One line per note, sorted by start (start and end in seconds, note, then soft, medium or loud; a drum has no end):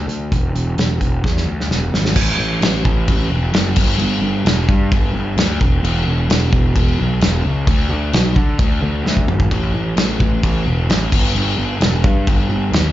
0.08 0.30 D2 medium
0.08 closed hi-hat medium
0.32 0.53 E1 medium
0.32 kick medium
0.32 closed hi-hat medium
0.54 0.76 E1 medium
0.54 closed hi-hat soft
0.77 0.99 E1 medium
0.77 snare loud
0.77 closed hi-hat medium
1.01 1.22 E1 medium
1.01 kick medium
1.01 closed hi-hat medium
1.24 1.45 E2 medium
1.24 kick medium
1.24 snare soft
1.37 snare soft
1.46 1.68 D2 medium
1.60 snare soft
1.69 1.91 E1 medium
1.69 snare medium
1.92 2.14 G#1 medium
1.92 snare medium
2.05 snare medium
2.16 2.37 A1 medium
2.16 kick loud
2.16 crash loud
2.16 crash medium
2.39 2.60 A1 medium
2.61 2.83 A1 medium
2.61 snare loud
2.61 crash medium
2.85 3.06 A1 medium
2.85 kick medium
3.08 3.29 A1 medium
3.08 kick loud
3.08 crash medium
3.30 3.51 E1 medium
3.53 3.74 F#1 medium
3.53 snare loud
3.53 crash medium
3.76 3.98 G1 medium
3.76 kick loud
3.76 crash medium
3.98 4.20 G1 medium
3.98 crash medium
4.22 4.43 G1 medium
4.45 4.66 E1 medium
4.45 snare loud
4.45 crash medium
4.69 4.90 G2 medium
4.69 kick loud
4.92 5.13 G1 medium
4.92 kick loud
4.92 crash medium
5.14 5.35 G1 medium
5.37 5.58 D2 medium
5.37 snare loud
5.37 crash medium
5.61 5.82 E1 medium
5.61 kick loud
5.83 6.04 E1 loud
5.83 crash medium
6.06 6.27 E1 medium
6.29 6.50 E1 medium
6.29 snare loud
6.29 crash medium
6.52 6.73 E1 medium
6.52 kick medium
6.76 6.97 E1 medium
6.76 kick loud
6.76 crash medium
6.98 7.19 B1 medium
7.21 7.42 E1 medium
7.21 snare loud
7.21 crash medium
7.45 7.65 C#2 medium
7.67 7.88 D2 medium
7.67 kick loud
7.67 crash medium
7.90 8.11 D2 medium
8.13 8.34 B1 medium
8.13 snare loud
8.13 crash medium
8.36 8.57 D3 medium
8.36 kick medium
8.59 8.80 D2 medium
8.59 kick loud
8.59 crash medium
8.83 9.03 D2 medium
9.05 9.26 D2 medium
9.05 snare medium
9.17 kick medium
9.28 9.49 G#1 medium
9.28 mid tom medium
9.40 kick loud
9.51 9.72 A1 medium
9.51 kick medium
9.51 crash medium
9.74 9.95 A1 medium
9.97 10.18 A1 medium
9.97 snare loud
9.97 crash medium
10.20 10.41 A1 medium
10.20 kick medium
10.43 10.64 A1 medium
10.43 kick loud
10.43 crash medium
10.66 10.87 E1 medium
10.89 11.10 A1 medium
10.89 snare loud
10.89 crash medium
11.12 11.33 G1 medium
11.12 kick loud
11.12 crash loud
11.35 11.56 G1 medium
11.35 crash medium
11.58 11.79 G1 medium
11.80 12.02 E1 loud
11.80 snare loud
11.80 crash medium
12.04 12.25 G2 medium
12.04 kick loud
12.27 12.48 G1 medium
12.27 kick loud
12.27 crash medium
12.49 12.71 G1 medium
12.72 12.92 D#2 medium
12.72 snare loud
12.72 crash medium